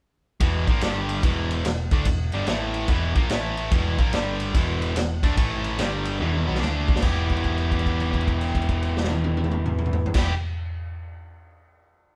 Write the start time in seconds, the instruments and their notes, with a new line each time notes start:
0.40 picked electric bass E1, distorted electric guitar E2 B2 E3, kick, ride
0.67 picked electric bass A#1, distorted electric guitar A#2 F3 A#3, kick, ride
0.81 picked electric bass G1, distorted electric guitar G2 D3 G3, snare, ride
1.09 ride
1.23 picked electric bass E1, distorted electric guitar E2 B2 E3, kick, ride
1.51 ride
1.65 picked electric bass E1, distorted electric guitar E2 B2, snare, ride
1.91 picked electric bass D2, distorted electric guitar D3 A3 D4, kick, ride
2.05 picked electric bass E1, distorted electric guitar E2 B2, kick, ride
2.32 picked electric bass G1, distorted electric guitar G2 D3 G3, ride
2.47 picked electric bass A1, distorted electric guitar A2 E3 A3, snare, ride
2.74 ride
2.88 picked electric bass E1, distorted electric guitar E2 B2 E3, kick, ride
3.15 picked electric bass A#1, distorted electric guitar A#2 F3 A#3, kick, ride
3.29 picked electric bass A1, distorted electric guitar A2 E3 A3, snare, ride
3.57 ride
3.71 picked electric bass E1, distorted electric guitar E2 B2 E3, kick, ride
3.98 picked electric bass A#1, distorted electric guitar A#2 F3 A#3, kick, ride
4.13 picked electric bass G1, distorted electric guitar G2 D3 G3, snare, ride
4.40 ride
4.55 picked electric bass E1, distorted electric guitar E2 B2 E3, kick, ride
4.82 ride
4.96 picked electric bass E1, distorted electric guitar E2 B2, snare, ride
5.23 picked electric bass D2, distorted electric guitar D3 A3 D4, kick, ride
5.37 picked electric bass A1, distorted electric guitar A2 E3 A3, kick, ride
5.64 ride
5.78 picked electric bass G1, distorted electric guitar G2 D3 G3, snare, ride
6.05 ride
6.20 picked electric bass E1, distorted electric guitar E2 B2 E3, high tom
6.33 high tom
6.46 picked electric bass B1, distorted electric guitar B2 F#3 B3
6.55 snare
6.60 picked electric bass D2, distorted electric guitar D3 A3 D4, snare
6.88 kick
6.96 snare
7.01 picked electric bass E1, distorted electric guitar E3 B3 E4, kick, crash
7.05 distorted electric guitar G4
7.29 kick, crash
7.37 crash
7.44 kick, crash
7.58 crash
7.72 kick, crash
7.79 crash
7.86 kick, crash
8.00 crash
8.13 kick, crash
8.21 crash
8.28 kick, crash
8.41 crash
8.55 kick, crash
8.62 crash
8.69 kick, crash
8.82 crash
8.97 snare
9.04 snare
9.10 high tom
9.24 high tom
9.37 high tom
9.44 mid tom
9.52 mid tom
9.66 mid tom
9.79 mid tom
9.86 mid tom
9.93 floor tom
10.06 floor tom
10.14 picked electric bass E1, distorted electric guitar E3 B3 E4, kick, snare, crash
10.18 distorted electric guitar G4